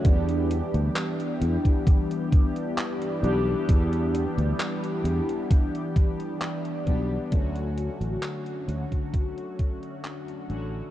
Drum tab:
HH |xxxxxxxxxxxxxxx-|xxxxxxxxxxxxxxx-|xxxxxxxxxxxxxxx-|
CP |----x-------x---|----x-------x---|----x-------x---|
BD |o------oo-o-----|o-------o-o---o-|o------oo-o-----|